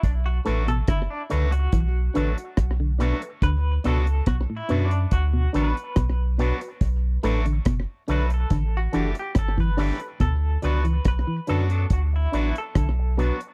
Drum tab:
HH |x-xxx-xxx-xxx-xx|x-xxx-xxx-xxx-xx|x-xxx-xxx-xxx-ox|x-xxx-xxx-xxx-xx|
SD |----r-------r-r-|----r-------r---|----r-------r-r-|----r-------r---|
BD |o---o---o---o---|o---o---o---o---|o---o---o---oo--|o---o---o---o---|